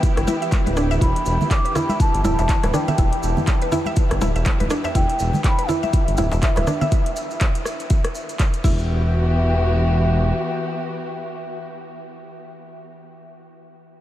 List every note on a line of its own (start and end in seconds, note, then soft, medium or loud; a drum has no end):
0.00 6.88 E3 medium
0.00 6.88 B3 medium
0.00 6.88 E4 medium
0.00 6.88 G4 medium
0.00 kick loud
0.00 closed hi-hat medium
0.04 maracas medium
0.17 0.26 G1 medium
0.17 cross-stick loud
0.17 closed hi-hat soft
0.17 maracas soft
0.27 0.36 E4 loud
0.27 high conga loud
0.27 maracas loud
0.42 0.51 E5 medium
0.42 closed hi-hat soft
0.42 maracas soft
0.52 kick loud
0.52 clap medium
0.52 closed hi-hat medium
0.52 high conga loud
0.52 maracas medium
0.66 0.98 D1 loud
0.66 0.76 B4 medium
0.66 closed hi-hat soft
0.66 high conga medium
0.66 maracas soft
0.77 0.91 D4 loud
0.77 cross-stick medium
0.77 maracas medium
0.91 1.01 E5 loud
0.91 maracas soft
1.01 1.13 E1 loud
1.01 1.14 E4 medium
1.01 1.48 B5 loud
1.01 kick loud
1.01 closed hi-hat medium
1.01 maracas soft
1.16 closed hi-hat soft
1.16 maracas soft
1.26 1.38 E1 medium
1.26 maracas loud
1.41 high conga medium
1.41 low conga medium
1.41 maracas soft
1.51 1.77 D6 loud
1.51 kick loud
1.51 clap loud
1.51 closed hi-hat medium
1.51 maracas medium
1.65 1.75 B4 medium
1.65 closed hi-hat soft
1.65 maracas soft
1.75 1.89 E4 loud
1.75 2.00 B5 loud
1.75 cross-stick medium
1.75 djembe slap medium
1.75 low conga loud
1.75 maracas medium
1.89 1.99 E5 loud
1.89 high conga medium
1.89 maracas soft
2.00 2.23 A5 loud
2.00 kick loud
2.00 closed hi-hat medium
2.00 maracas soft
2.14 2.22 G1 medium
2.14 closed hi-hat soft
2.14 maracas soft
2.24 2.36 D1 medium
2.24 2.32 E4 loud
2.24 2.76 A5 loud
2.24 djembe slap loud
2.24 high conga loud
2.24 djembe tone medium
2.24 maracas medium
2.39 2.47 E1 loud
2.39 2.48 E5 medium
2.39 closed hi-hat soft
2.39 djembe slap loud
2.39 maracas soft
2.49 kick loud
2.49 clap medium
2.49 closed hi-hat medium
2.49 djembe tone medium
2.49 maracas medium
2.63 2.72 D1 loud
2.63 2.73 B4 medium
2.63 cross-stick medium
2.63 closed hi-hat soft
2.63 djembe slap loud
2.63 high conga loud
2.63 maracas soft
2.73 2.88 D4 loud
2.73 3.48 G5 medium
2.73 cross-stick medium
2.73 low conga loud
2.73 maracas medium
2.88 2.97 E5 loud
2.88 low conga loud
2.88 maracas soft
2.98 3.10 E1 loud
2.98 3.11 E4 medium
2.98 kick loud
2.98 closed hi-hat medium
2.98 djembe tone medium
2.98 maracas medium
3.12 closed hi-hat soft
3.12 maracas soft
3.23 3.34 E1 medium
3.23 maracas loud
3.37 high conga medium
3.37 djembe tone medium
3.37 low conga loud
3.37 maracas soft
3.47 kick loud
3.47 clap loud
3.47 closed hi-hat medium
3.47 maracas soft
3.62 3.72 B4 medium
3.62 closed hi-hat soft
3.62 maracas soft
3.72 3.86 E4 loud
3.72 djembe slap medium
3.72 djembe tone loud
3.72 low conga medium
3.72 maracas medium
3.86 3.96 E5 loud
3.86 high conga medium
3.86 maracas soft
3.96 kick loud
3.96 closed hi-hat medium
3.96 maracas medium
4.11 4.19 G1 medium
4.11 cross-stick medium
4.11 closed hi-hat soft
4.11 djembe slap medium
4.11 maracas soft
4.21 4.33 D1 medium
4.21 4.29 E4 loud
4.21 djembe slap medium
4.21 djembe tone medium
4.21 high conga loud
4.21 maracas medium
4.36 4.44 E1 loud
4.36 4.45 E5 medium
4.36 closed hi-hat soft
4.36 maracas soft
4.45 kick loud
4.45 clap loud
4.45 closed hi-hat medium
4.45 high conga loud
4.45 maracas medium
4.60 4.69 D1 loud
4.60 4.70 B4 medium
4.60 closed hi-hat soft
4.60 djembe tone medium
4.60 high conga medium
4.60 maracas soft
4.70 4.84 D4 loud
4.70 cross-stick medium
4.70 maracas medium
4.84 4.94 E5 loud
4.84 djembe slap medium
4.84 maracas soft
4.95 5.06 E1 loud
4.95 5.08 E4 medium
4.95 5.41 G5 loud
4.95 kick loud
4.95 closed hi-hat medium
4.95 maracas medium
5.09 closed hi-hat soft
5.09 maracas soft
5.19 5.31 E1 medium
5.19 maracas medium
5.33 high conga medium
5.33 low conga loud
5.33 maracas soft
5.44 5.49 D6 loud
5.44 kick loud
5.44 clap loud
5.44 closed hi-hat medium
5.44 maracas medium
5.48 5.69 B5 loud
5.58 5.68 B4 medium
5.58 closed hi-hat soft
5.58 maracas soft
5.68 5.83 E4 loud
5.68 8.39 E5 loud
5.68 djembe slap medium
5.68 low conga medium
5.68 maracas medium
5.83 5.92 E5 loud
5.83 high conga medium
5.83 maracas soft
5.93 kick loud
5.93 closed hi-hat medium
5.93 maracas soft
6.08 6.16 G1 medium
6.08 closed hi-hat soft
6.08 maracas soft
6.17 6.30 D1 medium
6.17 6.26 E4 loud
6.17 djembe slap loud
6.17 djembe tone medium
6.17 high conga loud
6.17 maracas medium
6.32 6.41 E1 loud
6.32 6.42 E5 medium
6.32 closed hi-hat soft
6.32 djembe slap loud
6.32 maracas soft
6.42 kick loud
6.42 clap loud
6.42 closed hi-hat medium
6.42 djembe tone medium
6.42 maracas medium
6.56 6.65 D1 loud
6.56 6.67 B4 medium
6.56 cross-stick medium
6.56 closed hi-hat soft
6.56 djembe slap loud
6.56 high conga medium
6.56 maracas soft
6.67 6.81 D4 loud
6.67 cross-stick medium
6.67 low conga loud
6.67 maracas medium
6.81 6.91 E5 loud
6.81 low conga loud
6.81 maracas soft
6.92 kick loud
6.92 closed hi-hat medium
6.92 maracas medium
7.06 closed hi-hat soft
7.06 maracas soft
7.16 maracas medium
7.31 maracas soft
7.41 kick loud
7.41 clap loud
7.41 closed hi-hat medium
7.41 maracas medium
7.55 closed hi-hat soft
7.55 maracas soft
7.65 cross-stick medium
7.65 maracas medium
7.80 closed hi-hat soft
7.80 maracas soft
7.90 kick loud
7.90 closed hi-hat medium
7.90 maracas medium
8.04 cross-stick medium
8.04 closed hi-hat soft
8.04 maracas soft
8.15 maracas medium
8.29 closed hi-hat soft
8.29 maracas soft
8.39 kick loud
8.39 clap loud
8.39 closed hi-hat medium
8.39 maracas medium
8.54 closed hi-hat soft
8.54 maracas soft
8.64 10.32 E1 loud
8.64 11.66 E3 medium
8.64 11.65 B3 medium
8.64 9.10 E4 loud
8.64 11.66 F#4 medium
8.64 11.66 G4 medium
8.64 11.66 E5 loud
8.64 kick loud
8.64 crash medium
8.64 maracas medium
8.79 maracas soft